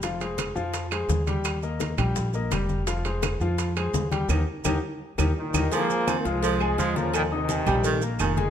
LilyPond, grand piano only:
\new Staff \with { instrumentName = "Grand piano" } { \time 4/4 \key f \minor \tempo 4 = 169 <f f' f''>8 <aes aes' c''>4 <f f' f''>4 <aes aes' c''>4 <g g' g''>8~ | <g g' g''>8 <bes bes' ees''>4 <g g' g''>4 <bes bes' ees''>8 <g g' g''>4 | <f f' f''>8 <aes aes' c''>4 <f f' f''>4 <aes aes' c''>4 <g g' g''>8 | <ees' g' bes'>8 r8 <ees' g' bes'>8 r4 <ees' g' bes'>8 r8 <ees' g' bes'>8 |
<aes aes' aes''>4 <c' c'' c'''>8 <f' f'' f'''>4 <aes aes' aes''>8 <f' f'' f'''>8 <bes bes' bes''>8~ | <bes bes' bes''>8 <ees' ees'' ees'''>4 <g g' g''>4 <bes bes' bes''>4 <aes aes' aes''>8 | }